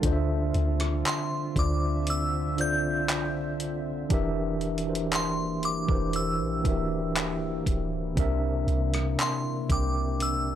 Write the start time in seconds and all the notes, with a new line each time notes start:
Already playing: F4
0.02 D2 D3 C4 D4 F4 C5 E5, kick, closed hi-hat
0.06 D#5
0.13 E5
0.54 D2, closed hi-hat
0.80 cross-stick, closed hi-hat
1.05 C6, clap, closed hi-hat
1.54 D2 D3 D4 F4 C5, kick, closed hi-hat
1.59 D5 D6
2.07 E6, closed hi-hat
2.56 D3 D4 F4 C5, closed hi-hat
2.61 D5 G6
2.83 C2
3.09 clap, closed hi-hat
3.60 closed hi-hat
4.09 E1 E3 A#3 D4 G4 A#4, kick, closed hi-hat
4.14 E5
4.61 closed hi-hat
4.78 closed hi-hat
4.85 E3 D4 F#4 A#4
4.90 C5
4.94 G4, closed hi-hat
5.12 C6, clap, closed hi-hat
5.63 D6, closed hi-hat
5.86 E1 E3 D4 G4 A#4, kick
5.91 C5
6.13 E4 E6, closed hi-hat
6.39 A#1
6.63 D1 E3 D4 F#4 A#4, kick, closed hi-hat
6.67 E5
6.71 G4
7.16 clap, closed hi-hat
7.66 D1, kick, closed hi-hat
8.16 C2 C3 C4 D4 A#4, kick, closed hi-hat
8.20 E5
8.67 C2, closed hi-hat
8.94 cross-stick, closed hi-hat
9.19 C6, clap, closed hi-hat
9.68 C2 C3 C4 D4 A#4 D6, kick, closed hi-hat
9.73 G5
10.20 E6, closed hi-hat